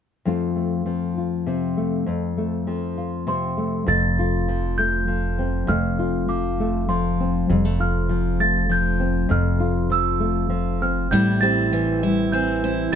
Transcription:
0.25 nylon-string guitar F2 F3 A3 C4 F4
0.56 nylon-string guitar A3
0.86 nylon-string guitar F3 C4
1.17 nylon-string guitar F4
1.46 nylon-string guitar C3 C4
1.77 nylon-string guitar A3
2.06 nylon-string guitar F2
2.37 nylon-string guitar A3
2.67 nylon-string guitar F3 C4
2.98 nylon-string guitar F4
3.27 nylon-string guitar C3 C4, celesta C6
3.57 nylon-string guitar A3
3.86 upright bass F1, nylon-string guitar F2 A3, celesta A6
4.19 nylon-string guitar F4
4.48 nylon-string guitar F3
4.78 nylon-string guitar A3, celesta G6
5.08 nylon-string guitar F3
5.39 nylon-string guitar C4
5.67 upright bass F1, nylon-string guitar F2 A3, celesta F6
5.99 nylon-string guitar F4
6.28 nylon-string guitar F3, celesta D6
6.60 nylon-string guitar A3
6.89 nylon-string guitar F3, celesta C6
7.20 nylon-string guitar C4
7.49 upright bass F1, nylon-string guitar F2 G3
7.65 nylon-string guitar A3
7.80 nylon-string guitar F4, celesta F6
8.09 nylon-string guitar F3
8.40 nylon-string guitar A3, celesta A6
8.69 nylon-string guitar F3, celesta G6
9.00 nylon-string guitar C4
9.29 upright bass F1, nylon-string guitar F2 A3, celesta F6
9.60 nylon-string guitar F4
9.90 nylon-string guitar F3, celesta E6
10.20 nylon-string guitar A3
10.50 nylon-string guitar F3
10.82 nylon-string guitar C4, celesta F6
11.11 upright bass A1, nylon-string guitar A2 G3, steel-string acoustic guitar G3 E4, celesta G6
11.41 steel-string acoustic guitar C4, nylon-string guitar G4, celesta A6
11.72 nylon-string guitar E3, steel-string acoustic guitar G3
12.02 nylon-string guitar G3, steel-string acoustic guitar E4
12.32 nylon-string guitar E3, steel-string acoustic guitar C4, celesta G6
12.63 nylon-string guitar C4, steel-string acoustic guitar E4

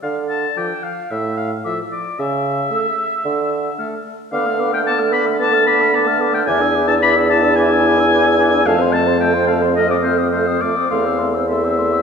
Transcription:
0.03 bassoon D3, oboe F5
0.29 oboe A5
0.56 french horn F3, clarinet A4, oboe G5, flute D6
0.83 oboe F5
1.10 bassoon A2, oboe E5
1.37 oboe F5
1.64 french horn F3, clarinet A4, oboe E5, flute D6
1.92 oboe D5
2.19 bassoon C#3, oboe E5
2.71 french horn A3, clarinet A4, flute E6
3.25 bassoon D3
3.78 french horn A3, clarinet A4, flute F6
4.32 bassoon D3, french horn B3, clarinet B4, oboe F5, flute D6
4.46 french horn A3, clarinet A4, flute F6
4.59 french horn B3, clarinet B4, flute D6
4.73 french horn A3, clarinet A4, oboe G5, flute F6
4.86 french horn B3, clarinet B4, oboe A5, flute D6
4.99 french horn A3, clarinet A4, flute F6
5.12 french horn B3, clarinet B4, oboe B5, flute D6
5.25 french horn A3, clarinet A4, flute F6
5.39 french horn B3, clarinet B4, oboe A5, flute D6
5.53 french horn A3, clarinet A4, flute F6
5.66 french horn B3, clarinet B4, oboe B5, flute D6
5.79 french horn A3, clarinet A4, flute F6
5.93 french horn B3, clarinet B4, oboe A5, flute D6
6.06 french horn A3, clarinet A4, flute F6
6.19 french horn B3, clarinet B4, flute D6
6.33 french horn A3, clarinet A4, oboe G5, flute F6
6.46 bassoon E2, french horn E4, clarinet B4, oboe G#5, flute D6
6.61 french horn D4, clarinet G#4, flute E6
6.75 french horn E4, clarinet B4, flute D6
6.88 french horn D4, clarinet G#4, oboe A5, flute E6
7.02 french horn E4, clarinet B4, oboe B5, flute D6
7.16 french horn D4, clarinet G#4, flute E6
7.29 french horn E4, clarinet B4, oboe A5, flute D6
7.42 french horn D4, clarinet G#4, flute E6
7.55 french horn E4, clarinet B4, oboe G#5, flute D6
7.69 french horn D4, clarinet G#4, flute E6
7.83 french horn E4, clarinet B4
7.87 flute D6
7.96 french horn D4, clarinet G#4, flute E6
8.10 french horn E4, clarinet B4
8.14 flute D6
8.23 french horn D4, clarinet G#4
8.27 flute E6
8.37 french horn E4, clarinet B4, flute D6
8.51 french horn D4, clarinet G#4, flute E6
8.65 bassoon F2, french horn A3, clarinet A4, oboe F5, flute A5
8.79 french horn C4, clarinet C5, flute C6
8.93 french horn A3, clarinet A4, oboe A5, flute A5
9.07 french horn C4, clarinet C5, flute C6
9.20 french horn A3, clarinet A4, oboe G5, flute A5
9.34 french horn C4, clarinet C5, flute C6
9.47 french horn A3, clarinet A4, oboe F5, flute A5
9.62 french horn C4, clarinet C5, flute C6
9.76 french horn A3, clarinet A4, oboe D#5, flute F6
9.89 french horn C4, clarinet C5, oboe D5, flute D#6
10.03 french horn A3, clarinet A4, oboe C5, flute F6
10.18 french horn C4, clarinet C5, flute D#6
10.32 french horn A3, clarinet A4, oboe C5, flute F6
10.47 french horn C4, clarinet C5, flute D#6
10.61 french horn A3, clarinet A4, oboe D5, flute F6
10.77 french horn C4, clarinet C5, flute D#6
10.89 bassoon E2, french horn A3, clarinet A4, oboe F5, flute C6
11.05 french horn C4, clarinet C5, flute E6
11.19 french horn A3, clarinet A4, flute C6
11.34 french horn C4, clarinet C5, flute E6
11.48 french horn A3, clarinet A4, oboe E5, flute C6
11.64 french horn C4, clarinet C5, flute E6
11.78 french horn A3, clarinet A4, flute C6
11.93 french horn C4, clarinet C5, flute E6

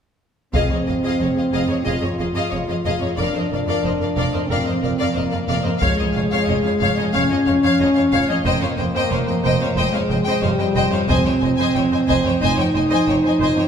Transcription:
0.53 double bass section F1, cello section F2, french horn section C4, viola section G#4, violin section D#5 F5, taiko
0.70 cello section F2, viola section G#4, violin section C#5 D#5
0.86 double bass section F1, cello section F2, viola section G#4, violin section D#5 F5
1.03 cello section F2, viola section G#4, violin section D#5
1.07 violin section F5
1.20 double bass section F1, cello section F2, viola section G#4, violin section C#5 D#5
1.35 cello section F2, viola section G#4, violin section D#5 F5
1.52 double bass section F1, cello section F2, viola section G#4, violin section D#5 F5
1.68 cello section F2, viola section G#4, violin section C#5 D#5
1.84 double bass section F1, cello section F2, french horn section F4, viola section G#4, violin section D#5 F5
2.01 cello section F2, viola section G#4, violin section C#5 D#5
2.18 double bass section F1, cello section F2, viola section G#4, violin section D#5 F5
2.34 cello section F2, viola section G#4, violin section D#5 F5
2.51 double bass section F1, cello section F2, viola section G#4, violin section C#5 D#5
2.67 cello section F2, viola section G#4, violin section D#5 F5
2.85 double bass section F1, cello section F2, viola section G#4, violin section D#5 F5
3.01 cello section F2, viola section G#4, violin section C#5
3.05 violin section D#5
3.17 double bass section F1, cello section F2, french horn section D4, viola section A#4, violin section D5
3.22 violin section F5
3.35 cello section F2, viola section A#4, violin section C5
3.39 violin section D#5
3.51 double bass section F1, cello section F2, viola section A#4, violin section D5 F5
3.67 cello section F2, viola section A#4, violin section D5 F5
3.83 double bass section F1, cello section F2, viola section A#4, violin section C5 D#5
4.00 cello section F2, viola section A#4, violin section D5 F5
4.16 double bass section F1, cello section F2, viola section A#4, violin section D5 F5
4.33 cello section F2, viola section A#4, violin section C5 D#5
4.47 double bass section F1, cello section F2, french horn section C4, viola section A#4
4.51 violin section D5 F5
4.66 cello section F2, viola section A#4, violin section C5 D#5
4.82 double bass section F1, cello section F2, viola section A#4, violin section D5 F5
4.99 cello section F2, viola section A#4, violin section D5 F5
5.13 double bass section F1, cello section F2, french horn section A#3, viola section A#4, violin section C5 D#5
5.31 cello section F2, viola section A#4, violin section D5 F5
5.48 double bass section F1, cello section F2, viola section A#4, violin section D5 F5
5.63 cello section F2, viola section A#4, violin section C5 D#5
5.78 french horn section G#3, viola section C#5, violin section F5, taiko
5.83 double bass section F1, cello section F2
5.97 cello section F2, viola section C#5, violin section D#5
6.12 double bass section F1, cello section F2, violin section F5
6.17 viola section C#5
6.30 cello section F2, viola section C#5, violin section F5
6.44 violin section D#5
6.48 double bass section F1, cello section F2, viola section C#5, violin section D#5
6.63 cello section F2, viola section C#5, violin section F5
6.79 double bass section F1, cello section F2, viola section C#5, violin section F5
6.96 cello section F2, viola section C#5, violin section D#5
7.12 double bass section F1, cello section F2, french horn section C#4, viola section C#5, violin section F5
7.29 cello section F2, viola section C#5, violin section D#5
7.46 double bass section F1, cello section F2, viola section C#5, violin section F5
7.63 cello section F2, viola section C#5, violin section F5
7.80 double bass section F1, cello section F2, viola section C#5, violin section D#5
7.84 violin section D#5
7.94 cello section F2, violin section F5
7.98 viola section C#5, violin section F5
8.11 double bass section F1, cello section F2, viola section C#5, violin section F5
8.28 cello section F2, viola section C#5, violin section D#5
8.45 double bass section F1, cello section F2, french horn section A#3, viola section C5, violin section D#5 G5
8.60 cello section F2, viola section C5, violin section C#5 F5
8.77 double bass section F1, cello section F2, viola section C5, violin section D#5 G5
8.94 cello section F2, viola section C5, violin section D#5 G5
9.10 double bass section F1, cello section F2, viola section C5, violin section C#5 F5
9.25 cello section F2, viola section C5, violin section G5
9.29 violin section D#5
9.43 double bass section F1, cello section F2, viola section C5, violin section D#5 G5
9.60 cello section F2, viola section C5, violin section C#5 F5
9.76 double bass section F1, cello section F2, french horn section G#3, viola section C5, violin section D#5 G5
9.93 cello section F2, viola section C5, violin section C#5 F5
10.10 double bass section F1, cello section F2, viola section C5, violin section D#5 G5
10.25 cello section F2, viola section C5, violin section D#5 G5
10.42 double bass section F1, cello section F2, french horn section G3, viola section C5, violin section C#5 F5
10.59 cello section F2, viola section C5, violin section D#5 G5
10.75 double bass section F1, cello section F2, viola section C5, violin section D#5 G5
10.91 cello section F2, viola section C5, violin section C#5 F5
11.08 double bass section F1, cello section F2, french horn section C4, viola section C5, violin section D#5 G#5, taiko
11.25 cello section F2, viola section C5, violin section C#5 G5
11.41 double bass section F1, cello section F2, viola section C5, violin section D#5 G#5
11.56 cello section F2, viola section C5, violin section D#5 G#5
11.75 double bass section F1, cello section F2, viola section C5, violin section C#5 G5
11.92 cello section F2, viola section C5, violin section D#5 G#5
12.08 double bass section F1, cello section F2, viola section C5, violin section D#5 G#5, taiko
12.25 cello section F2, viola section C5, violin section C#5 G5
12.40 double bass section F1, cello section F2, french horn section D#4, viola section C5, violin section D#5 G#5
12.56 cello section F2, viola section C5, violin section C#5 G5
12.73 double bass section F1, cello section F2, viola section C5, violin section D#5 G#5
12.90 cello section F2, viola section C5, violin section D#5 G#5
13.07 double bass section F1, cello section F2, viola section C5, violin section C#5 G5
13.23 cello section F2, viola section C5, violin section D#5 G#5
13.39 double bass section F1, cello section F2, viola section C5, violin section D#5 G#5
13.55 cello section F2, viola section C5, violin section C#5 G5

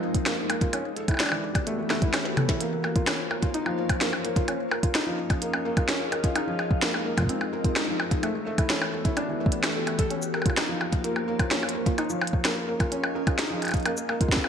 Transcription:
Already playing: felt piano F3 A#3 C4 D#4 F4 A#4, ambient pad G#3 D#4 A#4 C5
0.15 kick, closed hi-hat
0.26 felt piano A#3, snare, closed hi-hat, percussion blips
0.38 felt piano A#3
0.50 felt piano A#3, closed hi-hat, percussion blips
0.61 felt piano F4, kick, closed hi-hat
0.73 ambient pad E3, felt piano C#4, closed hi-hat, percussion blips
0.89 ambient pad F#4
0.96 ambient pad B3, felt piano A4, closed hi-hat
1.08 felt piano E4, kick, closed hi-hat, percussion blips
1.11 ambient pad G4, percussion blips
1.14 percussion blips
1.17 snare, closed hi-hat, percussion blips
1.20 felt piano D4, percussion blips
1.23 percussion blips
1.26 percussion blips
1.29 percussion blips
1.32 felt piano E3, percussion blips
1.55 kick, closed hi-hat, percussion blips
1.67 felt piano A3, closed hi-hat
1.79 felt piano A3
1.90 felt piano A3, snare, closed hi-hat, percussion blips
2.02 felt piano E4, kick, closed hi-hat
2.14 felt piano C#4, snare, closed hi-hat, percussion blips
2.25 snare
2.37 felt piano A4, closed hi-hat, mid tom, percussion blips
2.49 felt piano E4, kick, snare, closed hi-hat
2.60 ambient pad A#3, felt piano A#3, closed hi-hat
2.72 felt piano A#3
2.84 felt piano A#3, ambient pad F4 C5, percussion blips
2.96 felt piano F4, kick, closed hi-hat
3.07 felt piano C#4, snare, closed hi-hat, percussion blips
3.14 ambient pad C#5
3.31 felt piano A#4, percussion blips
3.43 felt piano F4, kick, closed hi-hat
3.54 felt piano D#4, closed hi-hat
3.66 felt piano F3, percussion blips
3.89 kick, closed hi-hat, percussion blips
4.01 felt piano A#3, snare, closed hi-hat
4.13 felt piano A#3, percussion blips
4.25 felt piano A#3, closed hi-hat
4.36 felt piano F4, kick, closed hi-hat
4.48 ambient pad C#4, felt piano C#4, closed hi-hat, percussion blips
4.53 ambient pad G#4 D#5
4.71 felt piano A#4, percussion blips
4.83 felt piano F4, kick, closed hi-hat
4.95 felt piano D#4, snare, closed hi-hat, percussion blips
5.07 felt piano F3
5.15 ambient pad F5
5.30 kick, closed hi-hat, percussion blips
5.42 felt piano A#3, closed hi-hat
5.54 felt piano A#3, percussion blips
5.65 felt piano A#3
5.77 felt piano F4, kick, closed hi-hat, percussion blips
5.89 felt piano C#4, snare, closed hi-hat
6.12 felt piano A#4, closed hi-hat, percussion blips
6.24 felt piano F4, kick, closed hi-hat
6.36 ambient pad G#3, felt piano D#4, closed hi-hat, percussion blips
6.43 ambient pad D#4
6.47 felt piano F3
6.59 percussion blips
6.71 kick
6.82 felt piano A#3, snare, closed hi-hat
6.92 felt piano A#3, ambient pad A#4, percussion blips
7.06 felt piano A#3, ambient pad C5
7.18 felt piano F4, kick, closed hi-hat, percussion blips
7.20 kick
7.22 kick
7.25 kick
7.27 felt piano C4, kick, closed hi-hat
7.41 percussion blips
7.53 felt piano A#4
7.64 felt piano F4, kick, closed hi-hat
7.76 felt piano D#4, snare, closed hi-hat, percussion blips
7.88 felt piano F3
8.00 percussion blips
8.11 kick, closed hi-hat
8.23 ambient pad E3, felt piano A3, closed hi-hat, percussion blips
8.29 ambient pad B3
8.35 felt piano A3
8.47 felt piano A3
8.52 ambient pad F#4
8.58 felt piano E4, kick, closed hi-hat, percussion blips
8.70 felt piano C#4, ambient pad G4, snare, closed hi-hat
8.82 percussion blips
8.93 felt piano A4
9.05 felt piano E4, kick, closed hi-hat
9.17 felt piano D4, closed hi-hat, percussion blips
9.29 felt piano E3
9.40 felt piano A3
9.46 kick
9.52 closed hi-hat
9.64 felt piano A3, snare, closed hi-hat, percussion blips
9.75 felt piano A4
9.87 felt piano A3, closed hi-hat, percussion blips
9.99 felt piano A4, kick, closed hi-hat
10.10 ambient pad A#3, felt piano C#4, closed hi-hat
10.21 ambient pad F4, cabasa
10.34 felt piano A#4, percussion blips
10.42 felt piano F4, kick, closed hi-hat, percussion blips
10.50 ambient pad C5, percussion blips
10.57 felt piano D#4, snare, closed hi-hat, percussion blips
10.69 felt piano F3
10.81 percussion blips
10.93 ambient pad C#5, kick, closed hi-hat
11.04 felt piano A#3, closed hi-hat
11.16 felt piano A#3, percussion blips
11.28 felt piano A#3
11.39 felt piano F4, kick, closed hi-hat, percussion blips
11.51 felt piano C#4, snare, closed hi-hat
11.63 percussion blips
11.69 closed hi-hat
11.75 felt piano A#4
11.86 felt piano F4, kick, closed hi-hat
11.98 ambient pad C#4, felt piano D#4, closed hi-hat, percussion blips
12.10 felt piano F3, cabasa
12.18 ambient pad G#4, percussion blips
12.27 closed hi-hat
12.33 kick
12.41 ambient pad D#5
12.45 felt piano A#3, snare, closed hi-hat, percussion blips
12.57 felt piano A#3, ambient pad F5
12.68 felt piano A#3
12.80 felt piano F4, kick, closed hi-hat, percussion blips
12.92 felt piano C#4, closed hi-hat
13.04 percussion blips
13.15 felt piano A#4
13.27 felt piano F4, kick, closed hi-hat, percussion blips
13.39 felt piano D#4, snare, closed hi-hat
13.50 felt piano F3
13.62 closed hi-hat, percussion blips
13.64 closed hi-hat, percussion blips
13.67 closed hi-hat, percussion blips
13.69 closed hi-hat, percussion blips
13.72 kick, closed hi-hat, percussion blips
13.77 closed hi-hat
13.80 closed hi-hat
13.83 closed hi-hat
13.86 ambient pad G#3, felt piano A#3, closed hi-hat, percussion blips
13.95 felt piano A#3, ambient pad D#4, cabasa
14.09 felt piano A#3, percussion blips
14.14 ambient pad A#4
14.21 felt piano F4, kick, closed hi-hat
14.29 felt piano C4, ambient pad C5, kick, snare, closed hi-hat
14.36 kick
14.44 percussion blips

